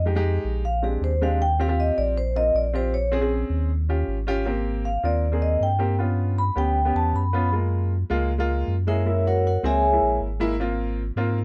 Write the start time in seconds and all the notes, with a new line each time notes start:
Already playing: F2
0.05 G#3 D#4 G4
0.15 G#3 D#4 G4
0.45 A#1
0.65 F5
0.82 G#3 C4 D4 G4 G#4
1.01 D#2 C5
1.21 G#3 C4 D4 G4 F5
1.42 G5
1.59 C4 F4 G4 F5
1.68 C4 F4 G4
1.80 D#5
1.98 A#1 D5
2.18 C5
2.36 C4 F4 A#4 D#5
2.54 A#1 D5
2.73 C4 F4 G4 C5
2.94 C#5
3.12 C4 C#4 G#4
3.21 C4 C#4 G#4
3.50 D#2
3.89 C#4 F4 G4
4.08 G#1
4.27 C#4 F4 G4
4.45 A#3 C4 G4
4.85 F5
5.03 D#2 A#3 C4 F4 D5
5.32 A#3 C4 G#4
5.42 D#5
5.60 G2 G5
5.79 A#3 C4 G4
5.99 B3 C#4 F4
6.38 B5
6.56 D2 B3 C#4 G4 G5
6.85 B3 C#4 G4
6.95 E2 A5
7.14 F#2 B5
7.33 B3 C#4 F4
7.52 G#3 A#3 F4
8.10 C#2 G#3 A#3 F4
8.38 G#3 A#3 F4
8.68 F#2
8.87 G#3 A#3 E4 G#4 A#4 C#5 E5
9.06 G#3 A#3 E4
9.27 F#4 A#4 C#5 F#5
9.47 F#4 A#4 C#5 F#5
9.63 C#2 G#3 A#3 C4 G#4 C#5 E5 G#5
9.92 G#3 A#3 E4
10.02 A#1
10.21 G#1
10.40 G#3 A#3 E4
10.60 A#3 C4 F4
11.16 G#2 A#3 C4 F4